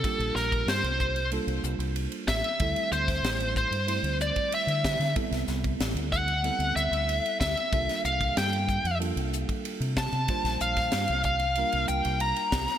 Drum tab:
RD |xx-xxx-xxx-xxx-x|xx-xxx-xxx-xxx-x|xx-xxx-xxx-xxx-x|xx-xxx-xxx-xxx-x|
HH |--p---p---p---p-|--p---p---p---p-|--p---p---p---p-|--p---p---p---p-|
SD |--o-o---------o-|---oo---------oo|-oo-o---------o-|-o--o---------o-|
BD |o--o--o-------o-|o--o--o----o--o-|o--o--o-------o-|o--o--o----o--o-|

RD |xx-xxx-xxx-xxx-x|
HH |--p---p---p---p-|
SD |-o-oo---------oo|
BD |o--o--o-------o-|